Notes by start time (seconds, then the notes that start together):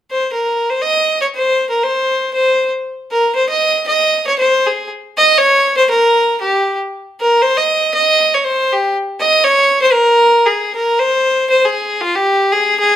0.11 C5
0.33 A#4
0.70 C5
0.82 D#5
1.22 C#5
1.34 C5
1.70 A#4
1.83 C5
2.34 C5
3.12 A#4
3.35 C5
3.49 D#5
3.87 D#5
4.27 C#5
4.38 C5
4.66 G#4
5.17 D#5
5.38 C#5
5.77 C5
5.90 A#4
6.41 G4
7.20 A#4
7.42 C5
7.57 D#5
7.94 D#5
8.34 C#5
8.44 C5
8.72 G4
9.20 D#5
9.44 C#5
9.82 C5
9.92 A#4
10.46 G#4
10.75 A#4
10.99 C5
11.50 C5
11.65 G#4
12.01 F4
12.15 G4
12.52 G#4
12.79 G#4